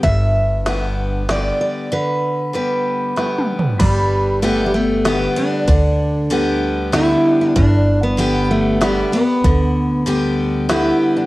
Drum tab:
CC |------------------|------------------|x-----------------|------------------|
RD |x-----x-----x-----|------------------|x-----x-----x--x--|x-----x-----x-----|
SD |------o-----o-----|------------o-----|------------o-----|------------o-----|
T2 |------------------|--------------o---|------------------|------------------|
FT |------------------|----------------o-|------------------|------------------|
BD |o-----------------|------------------|o-----------------|o-----------------|

CC |------------------|------------------|
RD |x-----x-----x--x--|x-----x-----x-----|
SD |------------o-----|------------o-----|
T2 |------------------|------------------|
FT |------------------|------------------|
BD |o-----------------|o-----------------|